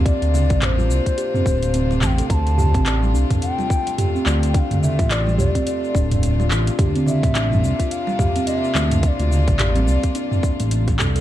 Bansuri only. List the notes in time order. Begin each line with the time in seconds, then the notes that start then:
0.05 D5
0.61 C5 D5
2.02 A5
2.06 G5
2.30 A5 A#5
3.42 G5
4.49 G5
4.54 G5
4.59 F5
4.82 E5
5.11 D5
5.39 D5
7.08 E5
7.92 F5
8.47 D#5
8.58 E5
9.03 E5
9.08 D5